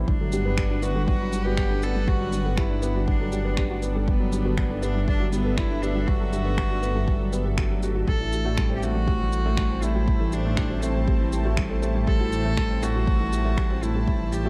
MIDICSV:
0, 0, Header, 1, 7, 480
1, 0, Start_track
1, 0, Tempo, 500000
1, 74, Time_signature, 4, 2, 24, 8
1, 13914, End_track
2, 0, Start_track
2, 0, Title_t, "Analog synth pad"
2, 0, Program_c, 0, 89
2, 0, Note_on_c, 0, 55, 78
2, 0, Note_on_c, 0, 64, 74
2, 188, Note_on_c, 0, 71, 83
2, 253, Note_on_c, 0, 78, 77
2, 416, Note_on_c, 0, 62, 79
2, 1237, Note_off_c, 0, 64, 0
2, 1525, Note_off_c, 0, 55, 0
2, 3723, Note_on_c, 0, 69, 79
2, 3870, Note_off_c, 0, 71, 0
2, 4529, Note_on_c, 0, 76, 82
2, 4672, Note_off_c, 0, 78, 0
2, 7750, Note_on_c, 0, 57, 87
2, 7956, Note_on_c, 0, 64, 87
2, 8492, Note_off_c, 0, 76, 0
2, 8781, Note_on_c, 0, 72, 73
2, 9113, Note_on_c, 0, 81, 84
2, 9304, Note_off_c, 0, 62, 0
2, 9645, Note_off_c, 0, 69, 0
2, 12247, Note_off_c, 0, 81, 0
2, 12259, Note_on_c, 0, 81, 99
2, 13914, Note_off_c, 0, 57, 0
2, 13914, Note_off_c, 0, 64, 0
2, 13914, Note_off_c, 0, 72, 0
2, 13914, Note_off_c, 0, 81, 0
2, 13914, End_track
3, 0, Start_track
3, 0, Title_t, "Synth arpeggio sound"
3, 0, Program_c, 1, 84
3, 199, Note_on_c, 1, 69, 78
3, 250, Note_off_c, 1, 69, 0
3, 317, Note_on_c, 1, 67, 75
3, 368, Note_off_c, 1, 67, 0
3, 555, Note_on_c, 1, 67, 80
3, 607, Note_off_c, 1, 67, 0
3, 673, Note_on_c, 1, 66, 95
3, 726, Note_off_c, 1, 66, 0
3, 913, Note_on_c, 1, 69, 74
3, 966, Note_off_c, 1, 69, 0
3, 1038, Note_on_c, 1, 67, 86
3, 1089, Note_off_c, 1, 67, 0
3, 1272, Note_on_c, 1, 67, 84
3, 1326, Note_off_c, 1, 67, 0
3, 1393, Note_on_c, 1, 66, 102
3, 1446, Note_off_c, 1, 66, 0
3, 1634, Note_on_c, 1, 69, 79
3, 1687, Note_off_c, 1, 69, 0
3, 1754, Note_on_c, 1, 67, 82
3, 1807, Note_off_c, 1, 67, 0
3, 1994, Note_on_c, 1, 67, 87
3, 2047, Note_off_c, 1, 67, 0
3, 2113, Note_on_c, 1, 66, 104
3, 2166, Note_off_c, 1, 66, 0
3, 2355, Note_on_c, 1, 69, 81
3, 2407, Note_off_c, 1, 69, 0
3, 2473, Note_on_c, 1, 67, 84
3, 2526, Note_off_c, 1, 67, 0
3, 2714, Note_on_c, 1, 67, 75
3, 2767, Note_off_c, 1, 67, 0
3, 2834, Note_on_c, 1, 66, 109
3, 2887, Note_off_c, 1, 66, 0
3, 3074, Note_on_c, 1, 69, 81
3, 3127, Note_off_c, 1, 69, 0
3, 3196, Note_on_c, 1, 67, 75
3, 3248, Note_off_c, 1, 67, 0
3, 3433, Note_on_c, 1, 67, 78
3, 3487, Note_off_c, 1, 67, 0
3, 3555, Note_on_c, 1, 66, 106
3, 3607, Note_off_c, 1, 66, 0
3, 3795, Note_on_c, 1, 69, 80
3, 3847, Note_off_c, 1, 69, 0
3, 3916, Note_on_c, 1, 67, 86
3, 3968, Note_off_c, 1, 67, 0
3, 4153, Note_on_c, 1, 67, 76
3, 4206, Note_off_c, 1, 67, 0
3, 4273, Note_on_c, 1, 66, 107
3, 4326, Note_off_c, 1, 66, 0
3, 4517, Note_on_c, 1, 69, 71
3, 4568, Note_off_c, 1, 69, 0
3, 4636, Note_on_c, 1, 67, 78
3, 4688, Note_off_c, 1, 67, 0
3, 4872, Note_on_c, 1, 67, 79
3, 4926, Note_off_c, 1, 67, 0
3, 4991, Note_on_c, 1, 66, 109
3, 5045, Note_off_c, 1, 66, 0
3, 5234, Note_on_c, 1, 69, 73
3, 5287, Note_off_c, 1, 69, 0
3, 5351, Note_on_c, 1, 67, 82
3, 5406, Note_off_c, 1, 67, 0
3, 5592, Note_on_c, 1, 67, 80
3, 5646, Note_off_c, 1, 67, 0
3, 5716, Note_on_c, 1, 66, 91
3, 5768, Note_off_c, 1, 66, 0
3, 5956, Note_on_c, 1, 69, 78
3, 6008, Note_off_c, 1, 69, 0
3, 6072, Note_on_c, 1, 67, 73
3, 6126, Note_off_c, 1, 67, 0
3, 6312, Note_on_c, 1, 67, 82
3, 6366, Note_off_c, 1, 67, 0
3, 6432, Note_on_c, 1, 66, 98
3, 6486, Note_off_c, 1, 66, 0
3, 6671, Note_on_c, 1, 69, 75
3, 6725, Note_off_c, 1, 69, 0
3, 6793, Note_on_c, 1, 67, 82
3, 6846, Note_off_c, 1, 67, 0
3, 7032, Note_on_c, 1, 67, 101
3, 7065, Note_off_c, 1, 67, 0
3, 7154, Note_on_c, 1, 67, 94
3, 7207, Note_off_c, 1, 67, 0
3, 7274, Note_on_c, 1, 67, 79
3, 7327, Note_off_c, 1, 67, 0
3, 7396, Note_on_c, 1, 67, 77
3, 7448, Note_off_c, 1, 67, 0
3, 7514, Note_on_c, 1, 67, 79
3, 7593, Note_off_c, 1, 67, 0
3, 7630, Note_on_c, 1, 66, 95
3, 7685, Note_off_c, 1, 66, 0
3, 7751, Note_on_c, 1, 67, 80
3, 7805, Note_off_c, 1, 67, 0
3, 7997, Note_on_c, 1, 67, 73
3, 8048, Note_off_c, 1, 67, 0
3, 8117, Note_on_c, 1, 66, 113
3, 8168, Note_off_c, 1, 66, 0
3, 8355, Note_on_c, 1, 69, 79
3, 8407, Note_off_c, 1, 69, 0
3, 8474, Note_on_c, 1, 67, 75
3, 8527, Note_off_c, 1, 67, 0
3, 8711, Note_on_c, 1, 67, 79
3, 8765, Note_off_c, 1, 67, 0
3, 8830, Note_on_c, 1, 66, 110
3, 8885, Note_off_c, 1, 66, 0
3, 9071, Note_on_c, 1, 69, 77
3, 9125, Note_off_c, 1, 69, 0
3, 9192, Note_on_c, 1, 67, 86
3, 9246, Note_off_c, 1, 67, 0
3, 9432, Note_on_c, 1, 67, 82
3, 9486, Note_off_c, 1, 67, 0
3, 9554, Note_on_c, 1, 66, 99
3, 9607, Note_off_c, 1, 66, 0
3, 9793, Note_on_c, 1, 69, 78
3, 9846, Note_off_c, 1, 69, 0
3, 9911, Note_on_c, 1, 67, 72
3, 9965, Note_off_c, 1, 67, 0
3, 10152, Note_on_c, 1, 67, 86
3, 10206, Note_off_c, 1, 67, 0
3, 10270, Note_on_c, 1, 66, 98
3, 10325, Note_off_c, 1, 66, 0
3, 10511, Note_on_c, 1, 69, 79
3, 10565, Note_off_c, 1, 69, 0
3, 10629, Note_on_c, 1, 67, 85
3, 10685, Note_off_c, 1, 67, 0
3, 10871, Note_on_c, 1, 67, 84
3, 10925, Note_off_c, 1, 67, 0
3, 10994, Note_on_c, 1, 66, 107
3, 11047, Note_off_c, 1, 66, 0
3, 11232, Note_on_c, 1, 69, 82
3, 11286, Note_off_c, 1, 69, 0
3, 11353, Note_on_c, 1, 67, 80
3, 11406, Note_off_c, 1, 67, 0
3, 11596, Note_on_c, 1, 67, 89
3, 11648, Note_off_c, 1, 67, 0
3, 11714, Note_on_c, 1, 66, 104
3, 11767, Note_off_c, 1, 66, 0
3, 11956, Note_on_c, 1, 69, 77
3, 12008, Note_off_c, 1, 69, 0
3, 12078, Note_on_c, 1, 67, 83
3, 12129, Note_off_c, 1, 67, 0
3, 12315, Note_on_c, 1, 67, 84
3, 12367, Note_off_c, 1, 67, 0
3, 12435, Note_on_c, 1, 66, 100
3, 12487, Note_off_c, 1, 66, 0
3, 12672, Note_on_c, 1, 69, 80
3, 12726, Note_off_c, 1, 69, 0
3, 12792, Note_on_c, 1, 67, 81
3, 12846, Note_off_c, 1, 67, 0
3, 13032, Note_on_c, 1, 67, 82
3, 13086, Note_off_c, 1, 67, 0
3, 13150, Note_on_c, 1, 66, 107
3, 13205, Note_off_c, 1, 66, 0
3, 13391, Note_on_c, 1, 69, 77
3, 13445, Note_off_c, 1, 69, 0
3, 13512, Note_on_c, 1, 67, 83
3, 13566, Note_off_c, 1, 67, 0
3, 13751, Note_on_c, 1, 67, 76
3, 13805, Note_off_c, 1, 67, 0
3, 13866, Note_on_c, 1, 66, 105
3, 13914, Note_off_c, 1, 66, 0
3, 13914, End_track
4, 0, Start_track
4, 0, Title_t, "Cello"
4, 0, Program_c, 2, 42
4, 80, Note_on_c, 2, 62, 83
4, 800, Note_on_c, 2, 66, 95
4, 814, Note_off_c, 2, 62, 0
4, 1028, Note_off_c, 2, 66, 0
4, 1034, Note_on_c, 2, 66, 101
4, 1396, Note_on_c, 2, 67, 112
4, 1410, Note_off_c, 2, 66, 0
4, 1762, Note_on_c, 2, 69, 102
4, 1776, Note_off_c, 2, 67, 0
4, 1998, Note_on_c, 2, 66, 107
4, 2013, Note_off_c, 2, 69, 0
4, 2480, Note_on_c, 2, 64, 92
4, 2495, Note_off_c, 2, 66, 0
4, 2948, Note_off_c, 2, 64, 0
4, 2954, Note_on_c, 2, 62, 83
4, 3636, Note_off_c, 2, 62, 0
4, 3918, Note_on_c, 2, 59, 89
4, 4640, Note_on_c, 2, 62, 90
4, 4654, Note_off_c, 2, 59, 0
4, 4868, Note_off_c, 2, 62, 0
4, 4874, Note_on_c, 2, 62, 99
4, 5097, Note_off_c, 2, 62, 0
4, 5120, Note_on_c, 2, 59, 96
4, 5354, Note_on_c, 2, 64, 106
4, 5368, Note_off_c, 2, 59, 0
4, 5590, Note_on_c, 2, 62, 95
4, 5604, Note_off_c, 2, 64, 0
4, 5832, Note_on_c, 2, 66, 105
4, 5846, Note_off_c, 2, 62, 0
4, 7273, Note_off_c, 2, 66, 0
4, 7759, Note_on_c, 2, 69, 107
4, 8371, Note_off_c, 2, 69, 0
4, 8406, Note_on_c, 2, 67, 76
4, 8482, Note_on_c, 2, 66, 109
4, 8497, Note_off_c, 2, 67, 0
4, 9441, Note_on_c, 2, 64, 95
4, 9455, Note_off_c, 2, 66, 0
4, 9919, Note_on_c, 2, 62, 96
4, 9933, Note_off_c, 2, 64, 0
4, 10396, Note_on_c, 2, 60, 87
4, 10410, Note_off_c, 2, 62, 0
4, 11355, Note_off_c, 2, 60, 0
4, 11593, Note_on_c, 2, 69, 114
4, 12317, Note_on_c, 2, 66, 108
4, 12331, Note_off_c, 2, 69, 0
4, 13279, Note_on_c, 2, 64, 92
4, 13294, Note_off_c, 2, 66, 0
4, 13758, Note_on_c, 2, 67, 101
4, 13773, Note_off_c, 2, 64, 0
4, 13914, Note_off_c, 2, 67, 0
4, 13914, End_track
5, 0, Start_track
5, 0, Title_t, "Felt piano"
5, 0, Program_c, 3, 0
5, 0, Control_c, 3, 64, 127
5, 85, Control_c, 3, 64, 0
5, 198, Note_on_c, 3, 54, 73
5, 227, Control_c, 3, 64, 127
5, 264, Note_off_c, 3, 54, 0
5, 320, Note_on_c, 3, 55, 74
5, 431, Note_off_c, 3, 55, 0
5, 437, Note_on_c, 3, 59, 101
5, 549, Note_off_c, 3, 59, 0
5, 678, Note_on_c, 3, 62, 77
5, 744, Note_off_c, 3, 62, 0
5, 793, Note_on_c, 3, 59, 95
5, 907, Note_off_c, 3, 59, 0
5, 913, Note_on_c, 3, 55, 79
5, 1027, Note_off_c, 3, 55, 0
5, 1154, Note_on_c, 3, 54, 75
5, 1222, Note_off_c, 3, 54, 0
5, 1274, Note_on_c, 3, 55, 76
5, 1388, Note_off_c, 3, 55, 0
5, 1392, Note_on_c, 3, 59, 105
5, 1507, Note_off_c, 3, 59, 0
5, 1633, Note_on_c, 3, 62, 74
5, 1702, Note_off_c, 3, 62, 0
5, 1750, Note_on_c, 3, 59, 92
5, 1866, Note_off_c, 3, 59, 0
5, 1871, Note_on_c, 3, 55, 79
5, 1986, Note_off_c, 3, 55, 0
5, 2108, Note_on_c, 3, 54, 81
5, 2179, Note_off_c, 3, 54, 0
5, 2230, Note_on_c, 3, 55, 75
5, 2346, Note_off_c, 3, 55, 0
5, 2347, Note_on_c, 3, 59, 94
5, 2465, Note_off_c, 3, 59, 0
5, 2588, Note_on_c, 3, 62, 79
5, 2659, Note_off_c, 3, 62, 0
5, 2707, Note_on_c, 3, 59, 108
5, 2824, Note_off_c, 3, 59, 0
5, 2830, Note_on_c, 3, 55, 80
5, 2946, Note_off_c, 3, 55, 0
5, 3070, Note_on_c, 3, 54, 79
5, 3140, Note_off_c, 3, 54, 0
5, 3187, Note_on_c, 3, 55, 77
5, 3304, Note_off_c, 3, 55, 0
5, 3310, Note_on_c, 3, 59, 101
5, 3426, Note_off_c, 3, 59, 0
5, 3549, Note_on_c, 3, 62, 81
5, 3620, Note_off_c, 3, 62, 0
5, 3672, Note_on_c, 3, 59, 93
5, 3787, Note_off_c, 3, 59, 0
5, 3794, Note_on_c, 3, 55, 88
5, 3908, Note_off_c, 3, 55, 0
5, 4030, Note_on_c, 3, 54, 82
5, 4100, Note_off_c, 3, 54, 0
5, 4150, Note_on_c, 3, 55, 76
5, 4266, Note_off_c, 3, 55, 0
5, 4272, Note_on_c, 3, 59, 96
5, 4387, Note_off_c, 3, 59, 0
5, 4513, Note_on_c, 3, 62, 78
5, 4582, Note_off_c, 3, 62, 0
5, 4632, Note_on_c, 3, 59, 105
5, 4747, Note_off_c, 3, 59, 0
5, 4750, Note_on_c, 3, 55, 80
5, 4866, Note_off_c, 3, 55, 0
5, 4992, Note_on_c, 3, 54, 74
5, 5061, Note_off_c, 3, 54, 0
5, 5115, Note_on_c, 3, 55, 76
5, 5228, Note_off_c, 3, 55, 0
5, 5229, Note_on_c, 3, 59, 102
5, 5345, Note_off_c, 3, 59, 0
5, 5475, Note_on_c, 3, 62, 81
5, 5543, Note_off_c, 3, 62, 0
5, 5592, Note_on_c, 3, 59, 97
5, 5707, Note_off_c, 3, 59, 0
5, 5715, Note_on_c, 3, 55, 84
5, 5829, Note_off_c, 3, 55, 0
5, 5957, Note_on_c, 3, 54, 74
5, 6024, Note_off_c, 3, 54, 0
5, 6075, Note_on_c, 3, 55, 76
5, 6188, Note_off_c, 3, 55, 0
5, 6193, Note_on_c, 3, 59, 90
5, 6307, Note_off_c, 3, 59, 0
5, 6436, Note_on_c, 3, 62, 79
5, 6503, Note_off_c, 3, 62, 0
5, 6553, Note_on_c, 3, 59, 102
5, 6668, Note_off_c, 3, 59, 0
5, 6675, Note_on_c, 3, 55, 74
5, 6788, Note_off_c, 3, 55, 0
5, 6915, Note_on_c, 3, 54, 77
5, 6983, Note_off_c, 3, 54, 0
5, 7033, Note_on_c, 3, 59, 97
5, 7143, Note_off_c, 3, 59, 0
5, 7157, Note_on_c, 3, 59, 72
5, 7270, Note_off_c, 3, 59, 0
5, 7276, Note_on_c, 3, 66, 79
5, 7389, Note_off_c, 3, 66, 0
5, 7397, Note_on_c, 3, 54, 71
5, 7509, Note_off_c, 3, 54, 0
5, 7519, Note_on_c, 3, 66, 96
5, 7622, Note_off_c, 3, 66, 0
5, 7637, Note_on_c, 3, 66, 84
5, 7704, Note_off_c, 3, 66, 0
5, 7765, Control_c, 3, 64, 0
5, 7876, Note_on_c, 3, 52, 77
5, 7930, Control_c, 3, 64, 127
5, 7944, Note_off_c, 3, 52, 0
5, 8113, Note_on_c, 3, 57, 98
5, 8227, Note_off_c, 3, 57, 0
5, 8237, Note_on_c, 3, 55, 84
5, 8350, Note_off_c, 3, 55, 0
5, 8353, Note_on_c, 3, 60, 79
5, 8422, Note_off_c, 3, 60, 0
5, 8477, Note_on_c, 3, 57, 102
5, 8589, Note_off_c, 3, 57, 0
5, 8595, Note_on_c, 3, 55, 73
5, 8709, Note_off_c, 3, 55, 0
5, 8836, Note_on_c, 3, 52, 73
5, 8903, Note_off_c, 3, 52, 0
5, 9079, Note_on_c, 3, 57, 103
5, 9190, Note_off_c, 3, 57, 0
5, 9197, Note_on_c, 3, 55, 75
5, 9309, Note_off_c, 3, 55, 0
5, 9313, Note_on_c, 3, 60, 79
5, 9382, Note_off_c, 3, 60, 0
5, 9439, Note_on_c, 3, 57, 93
5, 9550, Note_off_c, 3, 57, 0
5, 9555, Note_on_c, 3, 55, 85
5, 9669, Note_off_c, 3, 55, 0
5, 9793, Note_on_c, 3, 52, 80
5, 9862, Note_off_c, 3, 52, 0
5, 10031, Note_on_c, 3, 57, 99
5, 10146, Note_off_c, 3, 57, 0
5, 10158, Note_on_c, 3, 55, 84
5, 10270, Note_off_c, 3, 55, 0
5, 10274, Note_on_c, 3, 60, 78
5, 10342, Note_off_c, 3, 60, 0
5, 10396, Note_on_c, 3, 57, 105
5, 10509, Note_off_c, 3, 57, 0
5, 10516, Note_on_c, 3, 55, 76
5, 10629, Note_off_c, 3, 55, 0
5, 10754, Note_on_c, 3, 52, 76
5, 10822, Note_off_c, 3, 52, 0
5, 10994, Note_on_c, 3, 57, 103
5, 11108, Note_off_c, 3, 57, 0
5, 11111, Note_on_c, 3, 55, 80
5, 11226, Note_off_c, 3, 55, 0
5, 11230, Note_on_c, 3, 60, 78
5, 11300, Note_off_c, 3, 60, 0
5, 11350, Note_on_c, 3, 57, 99
5, 11466, Note_off_c, 3, 57, 0
5, 11471, Note_on_c, 3, 55, 86
5, 11586, Note_off_c, 3, 55, 0
5, 11710, Note_on_c, 3, 52, 80
5, 11780, Note_off_c, 3, 52, 0
5, 11951, Note_on_c, 3, 57, 98
5, 12066, Note_off_c, 3, 57, 0
5, 12070, Note_on_c, 3, 55, 86
5, 12186, Note_off_c, 3, 55, 0
5, 12195, Note_on_c, 3, 60, 79
5, 12263, Note_off_c, 3, 60, 0
5, 12317, Note_on_c, 3, 57, 109
5, 12429, Note_off_c, 3, 57, 0
5, 12434, Note_on_c, 3, 55, 76
5, 12548, Note_off_c, 3, 55, 0
5, 12674, Note_on_c, 3, 52, 78
5, 12742, Note_off_c, 3, 52, 0
5, 12914, Note_on_c, 3, 57, 105
5, 13028, Note_off_c, 3, 57, 0
5, 13031, Note_on_c, 3, 55, 80
5, 13146, Note_off_c, 3, 55, 0
5, 13155, Note_on_c, 3, 60, 80
5, 13223, Note_off_c, 3, 60, 0
5, 13274, Note_on_c, 3, 57, 96
5, 13388, Note_off_c, 3, 57, 0
5, 13392, Note_on_c, 3, 55, 89
5, 13507, Note_off_c, 3, 55, 0
5, 13638, Note_on_c, 3, 52, 77
5, 13704, Note_off_c, 3, 52, 0
5, 13875, Note_on_c, 3, 57, 98
5, 13914, Note_off_c, 3, 57, 0
5, 13914, End_track
6, 0, Start_track
6, 0, Title_t, "Detuned saw bass"
6, 0, Program_c, 4, 39
6, 75, Note_on_c, 4, 31, 88
6, 7730, Note_off_c, 4, 31, 0
6, 7754, Note_on_c, 4, 33, 85
6, 13914, Note_off_c, 4, 33, 0
6, 13914, End_track
7, 0, Start_track
7, 0, Title_t, "Drums"
7, 76, Note_on_c, 9, 36, 107
7, 172, Note_off_c, 9, 36, 0
7, 310, Note_on_c, 9, 82, 63
7, 406, Note_off_c, 9, 82, 0
7, 553, Note_on_c, 9, 26, 88
7, 555, Note_on_c, 9, 36, 106
7, 649, Note_off_c, 9, 26, 0
7, 651, Note_off_c, 9, 36, 0
7, 793, Note_on_c, 9, 82, 61
7, 889, Note_off_c, 9, 82, 0
7, 1035, Note_on_c, 9, 36, 106
7, 1131, Note_off_c, 9, 36, 0
7, 1274, Note_on_c, 9, 82, 63
7, 1370, Note_off_c, 9, 82, 0
7, 1512, Note_on_c, 9, 26, 86
7, 1514, Note_on_c, 9, 36, 98
7, 1608, Note_off_c, 9, 26, 0
7, 1610, Note_off_c, 9, 36, 0
7, 1751, Note_on_c, 9, 82, 60
7, 1847, Note_off_c, 9, 82, 0
7, 1994, Note_on_c, 9, 36, 105
7, 2090, Note_off_c, 9, 36, 0
7, 2232, Note_on_c, 9, 82, 63
7, 2328, Note_off_c, 9, 82, 0
7, 2472, Note_on_c, 9, 26, 85
7, 2474, Note_on_c, 9, 36, 107
7, 2568, Note_off_c, 9, 26, 0
7, 2570, Note_off_c, 9, 36, 0
7, 2712, Note_on_c, 9, 82, 63
7, 2808, Note_off_c, 9, 82, 0
7, 2954, Note_on_c, 9, 36, 99
7, 3050, Note_off_c, 9, 36, 0
7, 3190, Note_on_c, 9, 82, 63
7, 3286, Note_off_c, 9, 82, 0
7, 3430, Note_on_c, 9, 26, 90
7, 3434, Note_on_c, 9, 36, 102
7, 3526, Note_off_c, 9, 26, 0
7, 3530, Note_off_c, 9, 36, 0
7, 3671, Note_on_c, 9, 82, 59
7, 3767, Note_off_c, 9, 82, 0
7, 3914, Note_on_c, 9, 36, 101
7, 4010, Note_off_c, 9, 36, 0
7, 4152, Note_on_c, 9, 82, 58
7, 4248, Note_off_c, 9, 82, 0
7, 4393, Note_on_c, 9, 26, 89
7, 4395, Note_on_c, 9, 36, 103
7, 4489, Note_off_c, 9, 26, 0
7, 4491, Note_off_c, 9, 36, 0
7, 4634, Note_on_c, 9, 82, 60
7, 4730, Note_off_c, 9, 82, 0
7, 4875, Note_on_c, 9, 36, 101
7, 4971, Note_off_c, 9, 36, 0
7, 5113, Note_on_c, 9, 82, 62
7, 5209, Note_off_c, 9, 82, 0
7, 5354, Note_on_c, 9, 26, 88
7, 5355, Note_on_c, 9, 36, 98
7, 5450, Note_off_c, 9, 26, 0
7, 5451, Note_off_c, 9, 36, 0
7, 5597, Note_on_c, 9, 82, 57
7, 5693, Note_off_c, 9, 82, 0
7, 5835, Note_on_c, 9, 36, 107
7, 5931, Note_off_c, 9, 36, 0
7, 6076, Note_on_c, 9, 82, 58
7, 6172, Note_off_c, 9, 82, 0
7, 6314, Note_on_c, 9, 36, 98
7, 6316, Note_on_c, 9, 26, 93
7, 6410, Note_off_c, 9, 36, 0
7, 6412, Note_off_c, 9, 26, 0
7, 6557, Note_on_c, 9, 82, 61
7, 6653, Note_off_c, 9, 82, 0
7, 6794, Note_on_c, 9, 36, 100
7, 6890, Note_off_c, 9, 36, 0
7, 7035, Note_on_c, 9, 82, 63
7, 7131, Note_off_c, 9, 82, 0
7, 7274, Note_on_c, 9, 26, 86
7, 7274, Note_on_c, 9, 36, 106
7, 7370, Note_off_c, 9, 26, 0
7, 7370, Note_off_c, 9, 36, 0
7, 7514, Note_on_c, 9, 82, 61
7, 7610, Note_off_c, 9, 82, 0
7, 7753, Note_on_c, 9, 36, 104
7, 7849, Note_off_c, 9, 36, 0
7, 7994, Note_on_c, 9, 82, 62
7, 8090, Note_off_c, 9, 82, 0
7, 8233, Note_on_c, 9, 26, 97
7, 8233, Note_on_c, 9, 36, 103
7, 8329, Note_off_c, 9, 26, 0
7, 8329, Note_off_c, 9, 36, 0
7, 8474, Note_on_c, 9, 82, 58
7, 8570, Note_off_c, 9, 82, 0
7, 8714, Note_on_c, 9, 36, 105
7, 8810, Note_off_c, 9, 36, 0
7, 8952, Note_on_c, 9, 82, 65
7, 9048, Note_off_c, 9, 82, 0
7, 9192, Note_on_c, 9, 26, 101
7, 9194, Note_on_c, 9, 36, 104
7, 9288, Note_off_c, 9, 26, 0
7, 9290, Note_off_c, 9, 36, 0
7, 9431, Note_on_c, 9, 82, 64
7, 9527, Note_off_c, 9, 82, 0
7, 9674, Note_on_c, 9, 36, 109
7, 9770, Note_off_c, 9, 36, 0
7, 9911, Note_on_c, 9, 82, 65
7, 10007, Note_off_c, 9, 82, 0
7, 10150, Note_on_c, 9, 26, 95
7, 10154, Note_on_c, 9, 36, 107
7, 10246, Note_off_c, 9, 26, 0
7, 10250, Note_off_c, 9, 36, 0
7, 10392, Note_on_c, 9, 82, 66
7, 10488, Note_off_c, 9, 82, 0
7, 10633, Note_on_c, 9, 36, 111
7, 10729, Note_off_c, 9, 36, 0
7, 10872, Note_on_c, 9, 82, 66
7, 10968, Note_off_c, 9, 82, 0
7, 11110, Note_on_c, 9, 26, 97
7, 11112, Note_on_c, 9, 36, 108
7, 11206, Note_off_c, 9, 26, 0
7, 11208, Note_off_c, 9, 36, 0
7, 11353, Note_on_c, 9, 82, 64
7, 11449, Note_off_c, 9, 82, 0
7, 11592, Note_on_c, 9, 36, 116
7, 11688, Note_off_c, 9, 36, 0
7, 11831, Note_on_c, 9, 82, 69
7, 11927, Note_off_c, 9, 82, 0
7, 12072, Note_on_c, 9, 26, 90
7, 12072, Note_on_c, 9, 36, 116
7, 12168, Note_off_c, 9, 26, 0
7, 12168, Note_off_c, 9, 36, 0
7, 12314, Note_on_c, 9, 82, 68
7, 12410, Note_off_c, 9, 82, 0
7, 12552, Note_on_c, 9, 36, 117
7, 12648, Note_off_c, 9, 36, 0
7, 12795, Note_on_c, 9, 82, 72
7, 12891, Note_off_c, 9, 82, 0
7, 13032, Note_on_c, 9, 36, 120
7, 13034, Note_on_c, 9, 26, 93
7, 13128, Note_off_c, 9, 36, 0
7, 13130, Note_off_c, 9, 26, 0
7, 13276, Note_on_c, 9, 82, 65
7, 13372, Note_off_c, 9, 82, 0
7, 13513, Note_on_c, 9, 36, 105
7, 13609, Note_off_c, 9, 36, 0
7, 13752, Note_on_c, 9, 82, 67
7, 13848, Note_off_c, 9, 82, 0
7, 13914, End_track
0, 0, End_of_file